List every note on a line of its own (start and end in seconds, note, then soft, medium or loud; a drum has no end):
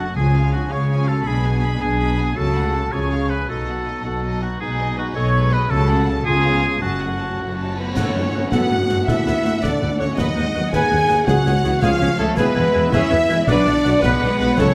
0.00 0.10 F#1 medium
0.00 0.10 F#2 medium
0.00 0.16 F#3 soft
0.00 0.16 A3 soft
0.00 0.16 F#4 medium
0.00 0.16 F#5 medium
0.00 0.17 F#5 medium
0.16 0.65 C#2 medium
0.16 0.68 C#3 medium
0.16 0.65 C#3 medium
0.16 0.34 F3 medium
0.16 0.34 C#4 medium
0.16 0.52 F4 medium
0.16 0.53 G#4 medium
0.16 0.52 G#4 medium
0.16 0.34 G#5 medium
0.16 0.53 G#5 medium
0.35 0.53 G#3 medium
0.35 0.53 F4 medium
0.35 0.53 F5 soft
0.52 0.71 F3 medium
0.52 0.60 C#4 medium
0.52 0.72 C#4 soft
0.52 0.72 D4 medium
0.52 0.60 F4 medium
0.52 0.73 F#4 medium
0.52 0.61 F#4 medium
0.52 0.73 F#5 medium
0.52 0.71 G#5 medium
0.70 1.20 C#2 medium
0.70 1.20 C#3 medium
0.70 0.90 G#3 medium
0.70 0.90 F4 soft
0.70 1.09 G#4 medium
0.70 1.07 C#5 medium
0.70 1.09 C#5 medium
0.70 0.89 F5 medium
0.70 1.09 C#6 medium
0.90 1.07 F3 medium
0.90 1.07 C#4 medium
0.90 1.07 G#5 medium
1.07 1.25 G#3 medium
1.07 1.14 C#4 medium
1.07 1.14 F4 medium
1.07 1.26 F4 medium
1.07 1.25 F#4 medium
1.07 1.26 A4 medium
1.07 1.28 A4 medium
1.07 1.26 F5 medium
1.07 1.28 A5 medium
1.24 1.74 B1 medium
1.24 1.75 B2 medium
1.24 1.43 G#3 medium
1.24 1.77 D4 medium
1.24 1.80 D4 medium
1.24 1.43 D4 medium
1.24 1.79 G#4 medium
1.24 1.77 G#4 medium
1.24 1.80 G#4 medium
1.24 1.80 G#5 medium
1.24 1.42 B5 medium
1.44 1.63 B3 medium
1.44 1.62 G#5 medium
1.63 1.81 G#3 medium
1.63 1.81 D4 medium
1.63 1.81 B5 medium
1.80 2.30 B1 medium
1.80 2.30 B2 medium
1.80 1.99 B3 medium
1.80 2.00 B3 medium
1.80 2.37 D4 medium
1.80 2.35 D4 medium
1.80 2.35 G#4 medium
1.80 2.38 G#4 medium
1.80 2.14 G#5 medium
1.80 2.00 G#5 medium
1.99 2.16 G#3 medium
1.99 2.17 D4 medium
1.99 2.17 B5 medium
2.18 2.37 B3 medium
2.18 2.37 G#5 medium
2.36 2.86 C#2 medium
2.36 2.86 C#3 medium
2.36 2.54 F#3 medium
2.36 2.54 C#4 medium
2.36 2.92 C#4 medium
2.36 2.91 F#4 medium
2.36 2.93 F#4 medium
2.36 2.91 A4 medium
2.36 2.93 A4 medium
2.36 2.95 A5 medium
2.36 2.54 A5 medium
2.55 2.74 A3 medium
2.55 2.74 F#4 medium
2.55 2.74 F#5 medium
2.73 2.93 F#3 medium
2.73 2.92 C#4 medium
2.73 2.93 A5 medium
2.92 3.42 C#2 medium
2.92 3.43 C#3 medium
2.92 3.10 F3 medium
2.92 3.30 C#4 medium
2.92 3.10 C#4 soft
2.92 3.30 F4 medium
2.92 3.29 G#4 medium
2.92 3.31 C#5 medium
2.92 3.29 C#5 medium
2.92 3.10 G#5 medium
2.92 3.32 C#6 medium
3.11 3.31 G#3 soft
3.11 3.30 F4 soft
3.11 3.31 F5 medium
3.29 3.50 F3 soft
3.29 3.49 C#4 soft
3.29 3.47 G#4 medium
3.29 3.48 B4 medium
3.29 3.49 B4 medium
3.29 3.50 G#5 soft
3.29 3.49 B5 medium
3.48 3.99 B1 medium
3.48 3.99 B2 medium
3.48 3.67 F#3 medium
3.48 4.57 B3 medium
3.48 3.66 D#4 medium
3.48 4.57 D#4 medium
3.48 4.03 F#4 medium
3.48 4.04 A4 medium
3.48 3.67 D#5 soft
3.48 4.04 A5 medium
3.67 3.87 B3 soft
3.67 3.86 F#4 soft
3.67 3.87 F#5 soft
3.86 4.06 F#3 soft
3.86 4.05 D#4 medium
3.86 4.06 D#5 soft
4.04 4.54 B1 medium
4.04 4.55 B2 medium
4.04 4.24 B3 medium
4.04 4.24 F#4 soft
4.04 4.44 F#4 medium
4.04 4.41 A4 medium
4.04 4.42 A4 medium
4.04 4.24 F#5 soft
4.04 4.45 A5 medium
4.23 4.41 F#3 soft
4.23 4.41 D#4 soft
4.23 4.41 D#5 soft
4.41 4.62 B3 soft
4.41 4.61 D#4 medium
4.41 4.61 F#4 soft
4.41 4.61 F#4 medium
4.41 4.60 F#4 medium
4.41 4.61 F#5 soft
4.41 4.62 F#5 medium
4.60 5.10 B1 medium
4.60 5.10 B2 medium
4.60 4.78 G#3 medium
4.60 5.69 B3 medium
4.60 4.78 D#4 medium
4.60 5.69 D#4 medium
4.60 4.97 D#4 medium
4.60 4.97 G#4 medium
4.60 4.78 B4 medium
4.60 4.98 G#5 medium
4.79 4.98 B3 medium
4.79 4.98 G#4 medium
4.79 4.98 D#5 medium
4.97 5.17 G#3 medium
4.97 5.16 D#4 medium
4.97 5.15 D#4 medium
4.97 5.16 F#4 medium
4.97 5.07 F#4 medium
4.97 5.16 B4 medium
4.97 5.05 F#5 medium
5.15 5.64 B1 medium
5.15 5.65 B2 medium
5.15 5.35 B3 medium
5.15 5.34 G#4 medium
5.15 5.52 A4 medium
5.15 5.54 C#5 loud
5.15 5.52 C#5 medium
5.15 5.34 D#5 medium
5.15 5.55 C#6 loud
5.34 5.52 G#3 medium
5.34 5.51 D#4 medium
5.34 5.51 B4 medium
5.52 5.71 B3 medium
5.52 5.71 G#4 medium
5.52 5.71 B4 medium
5.52 5.72 B4 medium
5.52 5.70 D#5 medium
5.52 5.72 B5 medium
5.70 6.20 C#2 medium
5.70 6.22 C#3 medium
5.70 6.20 C#3 medium
5.70 5.88 F#3 medium
5.70 5.88 C#4 medium
5.70 6.26 C#4 medium
5.70 6.26 F#4 medium
5.70 6.06 F#4 medium
5.70 6.25 A4 loud
5.70 6.07 A4 loud
5.70 5.88 A5 medium
5.70 6.07 A5 loud
5.88 6.08 A3 medium
5.88 6.07 F#4 medium
5.88 6.08 F#5 medium
6.07 6.26 F#3 medium
6.07 6.25 C#4 medium
6.07 6.26 A5 medium
6.25 6.76 C#2 medium
6.25 6.76 C#3 medium
6.25 6.44 G#3 medium
6.25 6.82 B3 medium
6.25 6.44 C#4 medium
6.25 6.84 F4 loud
6.25 6.83 F4 medium
6.25 6.78 G#4 loud
6.25 6.81 G#4 medium
6.25 6.84 G#5 medium
6.25 6.44 G#5 medium
6.44 6.64 B3 medium
6.44 6.63 F4 medium
6.44 6.63 F5 medium
6.62 6.82 G#3 medium
6.62 6.81 C#4 medium
6.62 6.82 G#5 medium
6.81 7.33 F#1 medium
6.81 7.33 F#2 medium
6.81 7.00 F#3 medium
6.81 7.76 A3 medium
6.81 7.77 C#4 medium
6.81 7.00 C#4 medium
6.81 7.75 F#4 medium
6.81 7.60 F#4 medium
6.81 7.51 F#5 medium
6.81 7.00 A5 medium
7.00 7.21 A3 medium
7.00 7.20 F#4 soft
7.00 7.20 F#5 medium
7.19 7.40 F#3 soft
7.19 7.39 C#4 soft
7.19 7.39 A5 soft
7.39 7.90 F#1 medium
7.39 7.90 F#2 medium
7.39 7.59 A3 medium
7.39 7.58 F#4 soft
7.39 7.58 F#5 soft
7.58 7.77 F#3 soft
7.58 7.76 C#4 soft
7.58 7.76 A5 soft
7.76 7.97 A3 soft
7.76 7.95 B3 medium
7.76 7.96 F#4 soft
7.76 7.94 B4 medium
7.76 7.95 B4 medium
7.76 7.95 B4 soft
7.76 7.95 B4 medium
7.76 7.96 F#5 soft
7.95 8.04 F#1 medium
7.95 8.04 F#2 medium
7.95 8.52 C#4 medium
7.95 8.04 A4 medium
7.95 8.14 A4 medium
7.95 8.50 C#5 medium
7.95 8.52 C#5 medium
7.95 8.51 C#5 medium
7.95 8.52 C#5 medium
7.95 10.14 F#5 medium
7.95 8.05 F#5 medium
7.95 concert bass drum medium
7.95 snare medium
7.95 crash soft
7.95 tam-tam medium
8.14 8.23 F#1 medium
8.14 8.23 F#2 medium
8.14 8.23 C#4 soft
8.14 8.23 A4 medium
8.14 8.23 F#5 soft
8.33 8.41 F#1 medium
8.33 8.41 F#2 soft
8.33 8.41 F#4 medium
8.33 8.42 A4 medium
8.33 8.42 F#5 medium
8.51 8.60 F#1 medium
8.51 8.60 F#2 medium
8.51 8.70 B3 medium
8.51 9.08 F#4 loud
8.51 8.60 A4 medium
8.51 8.69 A4 medium
8.51 9.06 F#5 medium
8.51 9.10 F#5 medium
8.51 9.07 F#5 medium
8.51 8.61 F#5 medium
8.51 9.08 F#5 medium
8.51 concert bass drum medium
8.51 snare medium
8.70 8.78 F#1 medium
8.70 8.78 F#2 medium
8.70 8.90 A3 medium
8.70 8.78 C#4 medium
8.70 8.79 A4 medium
8.70 8.79 F#5 medium
8.88 8.97 F#1 medium
8.88 8.97 F#2 medium
8.88 8.97 G#3 medium
8.88 8.97 F#4 medium
8.88 8.98 A4 medium
8.88 8.97 F#5 medium
8.88 snare soft
9.07 9.15 D2 medium
9.07 9.26 A3 medium
9.07 9.62 E4 medium
9.07 9.25 A4 medium
9.07 9.16 A4 medium
9.07 9.63 E5 medium
9.07 9.61 E5 medium
9.07 9.62 E5 medium
9.07 9.65 E5 medium
9.07 9.16 F#5 medium
9.07 concert bass drum medium
9.07 snare medium
9.26 9.34 D2 medium
9.26 9.45 B3 medium
9.26 9.33 E4 medium
9.26 9.36 A4 medium
9.26 9.35 F#5 medium
9.26 snare medium
9.44 9.52 D2 medium
9.44 10.18 A3 medium
9.44 9.52 F#4 medium
9.44 9.54 A4 medium
9.44 9.53 F#5 medium
9.44 snare soft
9.62 9.70 D2 medium
9.62 9.71 D2 medium
9.62 9.99 D4 medium
9.62 9.80 A4 medium
9.62 9.72 A4 medium
9.62 9.99 D5 medium
9.62 10.01 D5 medium
9.62 10.00 D5 medium
9.62 9.71 F#5 medium
9.62 concert bass drum medium
9.62 snare medium
9.80 9.88 D2 medium
9.80 9.89 D2 medium
9.80 9.89 E4 medium
9.80 9.89 A4 medium
9.80 9.90 F#5 medium
9.99 10.07 D2 medium
9.99 10.18 C#4 medium
9.99 10.07 F#4 medium
9.99 10.08 A4 medium
9.99 10.17 C#5 medium
9.99 10.18 C#5 medium
9.99 10.08 F#5 medium
10.17 10.25 D#2 medium
10.17 10.26 D#2 medium
10.17 10.36 F#3 medium
10.17 10.56 D#4 medium
10.17 10.35 B4 medium
10.17 10.26 B4 medium
10.17 10.71 D#5 medium
10.17 10.72 D#5 medium
10.17 10.73 D#5 medium
10.17 11.25 F#5 medium
10.17 10.26 F#5 medium
10.17 concert bass drum medium
10.17 snare medium
10.36 10.44 D#2 medium
10.36 10.54 G#3 medium
10.36 10.44 D#4 medium
10.36 10.44 B4 medium
10.36 10.44 F#5 medium
10.54 10.62 D#2 medium
10.54 10.73 F#3 medium
10.54 10.62 F#4 medium
10.54 10.63 B4 medium
10.54 10.63 F#5 medium
10.72 10.80 D#2 medium
10.72 11.26 D#3 medium
10.72 11.26 G#4 loud
10.72 10.90 B4 medium
10.72 10.81 B4 medium
10.72 10.81 F#5 medium
10.72 11.30 G#5 loud
10.72 11.26 G#5 loud
10.72 11.27 G#5 loud
10.72 concert bass drum medium
10.72 snare medium
10.90 10.98 D#2 medium
10.90 10.99 D#2 medium
10.90 10.98 D#4 medium
10.90 11.00 B4 medium
10.90 10.99 F#5 medium
11.08 11.17 D#2 medium
11.08 11.16 F#4 medium
11.08 11.18 B4 medium
11.08 11.16 F#5 medium
11.08 snare soft
11.27 11.35 C#2 medium
11.27 11.78 C#3 loud
11.27 11.45 F#3 medium
11.27 11.82 F#4 loud
11.27 11.44 G#4 medium
11.27 11.37 G#4 medium
11.27 12.37 C#5 medium
11.27 11.82 F#5 medium
11.27 11.81 F#5 medium
11.27 11.84 F#5 medium
11.27 11.35 G#5 medium
11.27 concert bass drum medium
11.27 snare medium
11.46 11.53 C#2 medium
11.46 11.64 G#3 medium
11.46 11.53 C#4 medium
11.46 11.54 G#4 medium
11.46 11.54 G#5 medium
11.46 snare medium
11.63 11.71 C#2 medium
11.63 11.72 E3 medium
11.63 11.71 F#4 medium
11.63 11.72 G#4 medium
11.63 11.72 G#5 medium
11.63 snare soft
11.81 11.90 C#2 medium
11.81 12.36 F3 medium
11.81 12.18 F4 loud
11.81 11.90 G#4 medium
11.81 11.99 G#4 loud
11.81 12.18 F5 loud
11.81 12.19 F5 medium
11.81 12.19 F5 loud
11.81 12.19 F5 medium
11.81 11.90 G#5 medium
11.81 concert bass drum medium
11.81 snare medium
12.01 12.08 C#2 medium
12.01 12.08 C#4 medium
12.01 12.09 G#4 medium
12.01 12.09 G#5 medium
12.17 12.26 C#2 medium
12.17 12.27 C#2 medium
12.17 12.36 A3 loud
12.17 12.26 F4 medium
12.17 12.28 G#4 medium
12.17 12.36 A4 medium
12.17 12.37 A4 medium
12.17 12.26 A4 medium
12.17 12.27 G#5 medium
12.36 12.45 E1 loud
12.36 12.45 E2 loud
12.36 12.92 G#3 loud
12.36 12.91 B3 loud
12.36 12.55 G#4 loud
12.36 12.90 B4 medium
12.36 12.91 B4 medium
12.36 12.46 B4 medium
12.36 12.95 B4 loud
12.36 13.45 E5 medium
12.36 12.45 G#5 medium
12.36 concert bass drum medium
12.36 snare medium
12.36 crash soft
12.55 12.63 E1 medium
12.55 12.63 E2 medium
12.55 12.63 B3 medium
12.55 12.64 B4 medium
12.55 12.63 G#5 medium
12.74 12.81 E1 medium
12.74 12.82 E2 medium
12.74 12.81 E4 medium
12.74 12.83 B4 medium
12.74 12.82 G#5 medium
12.91 13.00 E1 loud
12.91 13.00 E2 loud
12.91 13.11 C#4 loud
12.91 13.47 E4 loud
12.91 13.10 G#4 loud
12.91 13.01 B4 medium
12.91 13.47 E5 loud
12.91 13.46 E5 loud
12.91 13.47 E5 loud
12.91 13.01 G#5 medium
12.91 concert bass drum medium
12.91 snare medium
13.10 13.18 E1 medium
13.10 13.19 E2 medium
13.10 13.29 B3 loud
13.10 13.18 B3 medium
13.10 13.19 B4 medium
13.10 13.19 G#5 medium
13.28 13.37 E1 medium
13.28 13.37 E2 medium
13.28 13.36 G#3 loud
13.28 13.37 E4 medium
13.28 13.37 B4 medium
13.28 13.38 G#5 medium
13.28 snare medium
13.47 13.55 B1 loud
13.47 13.66 F#3 loud
13.47 14.01 D4 loud
13.47 13.56 B4 medium
13.47 13.65 B4 loud
13.47 14.01 D5 loud
13.47 14.03 D5 loud
13.47 14.02 D5 loud
13.47 13.56 F#5 medium
13.47 14.74 F#5 medium
13.47 concert bass drum medium
13.47 snare medium
13.66 13.74 B1 medium
13.66 13.85 E3 medium
13.66 13.74 D4 medium
13.66 13.74 B4 medium
13.66 13.74 F#5 medium
13.66 snare medium
13.84 13.92 B1 medium
13.84 13.92 F#3 loud
13.84 13.92 F#4 medium
13.84 13.93 B4 medium
13.84 13.92 F#5 medium
13.84 snare soft
14.02 14.10 B1 loud
14.02 14.57 G#3 loud
14.02 14.38 B3 loud
14.02 14.10 B4 medium
14.02 14.38 B4 loud
14.02 14.39 B4 loud
14.02 14.37 B4 loud
14.02 14.20 B4 loud
14.02 14.10 F#5 medium
14.02 concert bass drum medium
14.02 snare medium
14.20 14.29 B1 medium
14.20 14.29 D4 medium
14.20 14.29 B4 medium
14.20 14.29 F#5 medium
14.38 14.47 B1 medium
14.38 14.48 B1 medium
14.38 14.58 B3 loud
14.38 14.48 F#4 medium
14.38 14.47 B4 medium
14.38 14.57 B4 loud
14.38 14.58 B4 loud
14.38 14.60 B4 loud
14.38 14.47 F#5 medium
14.56 14.66 C#2 loud
14.56 14.74 C#3 loud
14.56 14.74 F#3 loud
14.56 14.74 C#4 loud
14.56 14.66 A4 medium
14.56 14.74 A4 loud
14.56 14.74 C#5 loud
14.56 14.67 F#5 medium
14.56 concert bass drum medium
14.56 snare medium